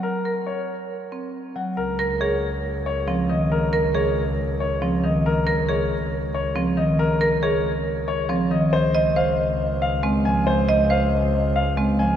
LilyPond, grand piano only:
\new Staff \with { instrumentName = "Grand piano" } { \time 4/4 \key des \major \tempo 4 = 138 bes'8 r8 des''8 r2 ges''8 | bes'8 r8 des''8 r4 des''8 r8 ees''8 | bes'8 r8 des''8 r4 des''8 r8 ees''8 | bes'8 r8 des''8 r4 des''8 r8 ees''8 |
bes'8 r8 des''8 r4 des''8 r8 ees''8 | c''8 r8 f''8 r4 f''8 r8 aes''8 | c''8 r8 f''8 r4 f''8 r8 aes''8 | }